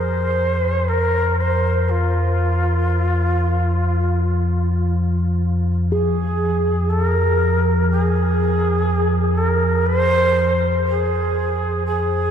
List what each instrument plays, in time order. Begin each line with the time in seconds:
Already playing: synth drone F2 F3, shakuhachi C5
0.89 shakuhachi A#4
1.40 shakuhachi C5
1.89 shakuhachi F4
5.89 synth drone F2 F3, shakuhachi G#4, singing bowl G#4
6.90 shakuhachi A4
7.04 shakuhachi A#4
7.91 shakuhachi G#4
9.37 shakuhachi A#4
9.87 shakuhachi C5
10.88 shakuhachi G#4
11.86 shakuhachi G#4